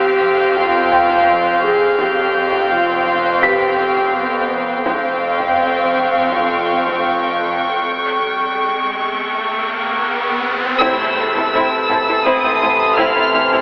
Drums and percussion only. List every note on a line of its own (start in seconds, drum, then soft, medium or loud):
0.21 taiko medium
0.57 taiko medium
1.10 taiko medium
1.99 taiko medium
2.52 taiko medium
3.06 taiko medium
3.42 taiko medium
3.96 taiko medium
4.86 taiko medium
5.40 taiko medium
5.95 taiko medium
6.32 taiko medium
6.87 taiko medium
10.81 concert bass drum medium
10.81 taiko medium
10.81 crash medium
11.54 taiko medium
11.73 taiko low soft
12.27 taiko medium
12.81 taiko low soft
12.98 taiko medium
13.52 taiko low soft